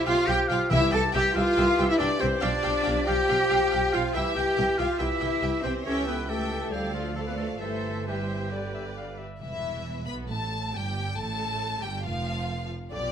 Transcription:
Already playing: bassoon F3, clarinet G4
0.06 double bass section B1, french horn section F4, cello section F4, viola section G4 F5, oboe F5, flute F5, violin section F5 G5
0.27 double bass section B1, bassoon F3, viola section G4 F5, french horn section G4, cello section G4, clarinet G4, oboe G5, violin section G5, flute G5
0.48 double bass section B1, cello section F4, french horn section F4, viola section G4 F5, oboe F5, flute F5, violin section F5 G5
0.69 double bass section C2, timpani C3, bassoon E3, cello section E4, french horn section E4, viola section G4 E5, clarinet G4, oboe E5, flute E5, violin section E5 G5
0.91 double bass section C2, viola section G4 E5, cello section A4, french horn section A4, violin section G5 A5, oboe A5, flute A5
1.13 double bass section C2, bassoon E3, viola section G4 E5, cello section G4, french horn section G4, clarinet G4, violin section G5, flute G5, oboe G5
1.34 double bass section C2, french horn section F4, cello section F4, viola section G4 E5, flute F5, oboe F5, violin section F5 G5
1.56 double bass section C2, viola section G4 E5, violin section G5
1.78 double bass section C2, viola section G4 E5, violin section G5
1.88 french horn section E4, cello section E4, oboe E5, flute E5, violin section E5
1.98 double bass section C2, french horn section D4, cello section D4, viola section G4 E5, flute D5, oboe D5, violin section D5 G5
2.19 double bass section C2, french horn section C4, cello section C4, viola section G4 E5, flute C5, oboe C5, violin section C5 G5
2.40 double bass section B1, bassoon F3, french horn section D4, cello section D4, viola section G4 F5, clarinet G4, flute D5, oboe D5, violin section D5 G5
2.62 double bass section B1, viola section G4 F5, violin section G5
2.84 double bass section B1, viola section G4 F5, violin section G5
3.06 double bass section B1, viola section G4 F5, french horn section G4, cello section G4, flute G5, violin section G5, oboe G5
3.28 double bass section B1, viola section G4 F5, violin section G5
3.49 double bass section B1, viola section G4 F5, violin section G5
3.71 double bass section B1, viola section G4 F5, violin section G5
3.92 double bass section B1, cello section F4, french horn section F4, viola section G4 F5, oboe F5, violin section F5 G5, flute F5
4.12 double bass section C2, bassoon E3, french horn section E4, cello section E4, viola section G4 E5, clarinet G4, flute E5, oboe E5, violin section E5 G5
4.35 double bass section C2, viola section G4 E5, cello section G4, french horn section G4, violin section G5, flute G5, oboe G5
4.57 double bass section C2, viola section G4 E5, violin section G5
4.77 double bass section C2, cello section F4, french horn section F4, viola section G4 E5, oboe F5, flute F5, violin section F5 G5
4.99 double bass section C2, bassoon E3, cello section E4, french horn section E4, viola section G4 E5, clarinet G4, oboe E5, flute E5, violin section E5 G5
5.20 double bass section C2, viola section G4 E5, violin section G5
5.41 double bass section C2, viola section G4 E5, violin section G5
5.63 double bass section C2, cello section C4, french horn section C4, viola section G4 E5, oboe C5, flute C5, violin section C5 G5
5.84 double bass section C#2, bassoon E3, cello section C#4, french horn section C#4, clarinet G4, viola section A4 E5, violin section C#5 G5, flute C#5, oboe C#5
6.07 cello section B3, french horn section B3, flute B4, oboe B4, violin section B4
6.28 bassoon E3, cello section A3, french horn section A3, clarinet G4, viola section A4 E5, oboe A4, violin section A4 G5, flute A4
6.71 double bass section D2, bassoon F3, cello section G3, french horn section G3, oboe G4, flute G4, violin section G4 F5, viola section A4 D5, clarinet A4
6.93 french horn section F3, cello section F3, oboe F4, flute F4, violin section F4
7.15 bassoon F3, french horn section A3, cello section A3, viola section A4 D5, clarinet A4, oboe A4, violin section A4 F5, flute A4
7.26 french horn section B3, cello section B3, violin section B4, oboe B4, flute B4
7.37 french horn section A3, cello section A3, oboe A4, flute A4, violin section A4, clarinet B4
7.60 double bass section G1, bassoon E3, french horn section A3, cello section A3, viola section G4 C5, oboe A4, flute A4, violin section A4 E5, clarinet C5
8.06 bassoon E3, french horn section G3, cello section G3, oboe G4, viola section G4 C5, flute G4, violin section G4 E5, clarinet B4
8.28 clarinet C5
8.52 bassoon D3, viola section G4 B4, clarinet D5, violin section D5
8.75 clarinet E5
8.97 clarinet F5
9.18 clarinet E5
9.41 double bass section E1, cello section E2, timpani C3, viola section E3, violin section E4 E5
10.07 double bass section B1, cello section B2, viola section B3, violin section B4 B5
10.29 double bass section A1, cello section A2, viola section A3, violin section A4 A5
10.74 double bass section G1, cello section G2, viola section G3, violin section G4 G5
11.17 double bass section A1, cello section A2, viola section A3, violin section A4 A5
11.82 double bass section G1, cello section G2, viola section G3, violin section G4 G5
12.04 double bass section F1, cello section F2, viola section F3, violin section F4 F5
12.90 double bass section B1, cello section B2, viola section D3 F4, violin section G4 D5

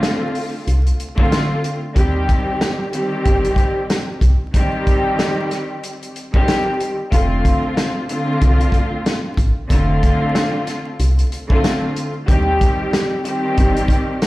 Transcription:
Already playing: string section D3 A3 C4 F4
0.03 snare, closed hi-hat
0.35 open hi-hat
0.67 fm bass C2, closed hi-hat
0.86 closed hi-hat
1.00 closed hi-hat
1.17 string section D3 A3 C4 F4, kick
1.32 snare, closed hi-hat
1.64 closed hi-hat
1.94 fm bass D#2, string section D#3 G3 C4 G4, kick, closed hi-hat
2.29 kick, closed hi-hat
2.61 snare, closed hi-hat
2.92 string section D#3 G3 C4 G4, closed hi-hat
3.25 fm bass G1, kick, closed hi-hat
3.45 closed hi-hat
3.56 kick, closed hi-hat
3.90 snare, closed hi-hat
4.21 fm bass C2, kick, closed hi-hat
4.54 string section D#3 G3 C4 G4, kick, closed hi-hat
4.87 kick, closed hi-hat
5.19 snare, closed hi-hat
5.51 snare, closed hi-hat
5.83 closed hi-hat
6.03 closed hi-hat
6.16 closed hi-hat
6.33 string section D#3 G3 C4 G4, kick
6.48 snare, closed hi-hat
6.80 closed hi-hat
7.11 fm bass F1, string section D3 A3 C4 F4, kick, closed hi-hat
7.45 kick, closed hi-hat
7.77 snare, closed hi-hat
8.08 string section D3 A3 C4 F4, closed hi-hat
8.41 fm bass C2, kick, closed hi-hat
8.61 closed hi-hat
8.72 kick, closed hi-hat
9.06 snare, closed hi-hat
9.37 fm bass A1, kick, closed hi-hat
9.68 fm bass F1, string section D3 A3 C4 F4, kick, closed hi-hat
10.03 kick, closed hi-hat
10.35 snare, closed hi-hat
10.67 snare, closed hi-hat
10.99 fm bass C2, closed hi-hat
11.19 closed hi-hat
11.32 closed hi-hat
11.49 string section D3 A3 C4 F4, kick
11.64 snare, closed hi-hat
11.96 closed hi-hat
12.27 fm bass D#2, string section D#3 G3 C4 G4, kick, closed hi-hat
12.61 kick, closed hi-hat
12.93 snare, closed hi-hat
13.25 string section D#3 G3 C4 G4, closed hi-hat
13.57 fm bass G1, kick, closed hi-hat
13.76 closed hi-hat
13.88 kick, closed hi-hat
14.22 snare, closed hi-hat

